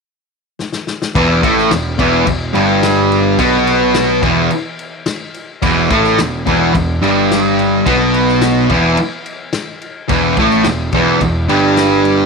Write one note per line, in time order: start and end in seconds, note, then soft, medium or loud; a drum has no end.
0.59 snare medium
0.72 snare medium
0.87 snare medium
1.02 snare loud
1.15 1.41 E1 medium
1.15 1.42 E2 medium
1.15 1.42 E3 loud
1.15 kick loud
1.15 crash medium
1.42 1.69 A1 loud
1.42 1.70 A2 medium
1.42 1.71 A3 medium
1.42 kick loud
1.42 crash medium
1.58 snare soft
1.71 1.98 E1 medium
1.71 1.93 E2 medium
1.71 snare loud
1.71 crash medium
1.98 2.25 E1 medium
1.98 2.25 E2 medium
1.98 2.26 E3 loud
1.98 kick loud
1.98 crash medium
2.26 2.53 E1 medium
2.26 2.49 E2 medium
2.26 kick medium
2.26 crash medium
2.53 3.35 G1 medium
2.53 3.37 G2 loud
2.53 3.38 G3 medium
2.53 crash medium
2.83 snare loud
2.83 crash medium
3.12 crash medium
3.38 4.19 B1 loud
3.38 4.22 B2 medium
3.38 4.22 B3 loud
3.38 kick loud
3.38 crash medium
3.67 crash medium
3.94 snare loud
3.94 crash medium
4.22 4.49 E1 loud
4.22 4.50 E2 medium
4.22 4.50 E3 loud
4.22 kick loud
4.22 crash medium
4.51 crash medium
4.79 crash medium
5.06 snare loud
5.06 crash medium
5.34 crash medium
5.62 5.89 E1 loud
5.62 5.90 E2 loud
5.62 5.90 E3 loud
5.62 kick loud
5.62 crash medium
5.90 6.16 A1 loud
5.90 6.18 A2 medium
5.90 6.18 A3 loud
5.90 kick loud
5.90 crash medium
6.04 snare soft
6.18 6.45 E1 medium
6.18 6.42 E2 medium
6.18 snare loud
6.18 crash medium
6.46 6.73 E1 medium
6.46 6.73 E2 medium
6.46 6.74 E3 loud
6.46 kick medium
6.46 crash medium
6.74 7.01 E1 medium
6.74 6.97 E2 medium
6.74 kick medium
6.74 crash medium
7.02 7.82 G1 loud
7.02 7.85 G2 medium
7.02 7.86 G3 loud
7.02 crash medium
7.31 snare loud
7.31 crash medium
7.59 crash medium
7.86 8.66 B1 loud
7.86 8.70 B2 loud
7.86 8.70 B3 loud
7.86 kick loud
7.86 crash medium
8.14 crash medium
8.28 snare soft
8.41 snare loud
8.41 crash medium
8.69 8.96 E1 medium
8.69 8.97 E2 medium
8.69 8.98 E3 loud
8.69 kick loud
8.69 crash medium
8.97 crash medium
9.26 crash medium
9.53 snare loud
9.53 crash medium
9.81 crash medium
10.08 10.36 E1 medium
10.08 10.36 E2 loud
10.08 10.37 E3 loud
10.08 kick loud
10.08 crash medium
10.37 10.64 A1 loud
10.37 10.65 A2 loud
10.37 10.66 A3 loud
10.37 kick loud
10.37 crash medium
10.50 snare soft
10.64 10.91 E1 medium
10.64 10.88 E2 medium
10.64 snare loud
10.64 crash medium
10.92 11.19 E1 medium
10.92 11.20 E2 medium
10.92 11.21 E3 loud
10.92 kick loud
10.92 crash medium
11.21 11.47 E1 medium
11.21 11.44 E2 medium
11.21 kick medium
11.21 crash medium
11.48 12.26 G1 loud
11.48 12.26 G2 loud
11.48 12.26 G3 loud
11.48 crash medium
11.77 snare loud
11.77 crash medium
12.05 crash medium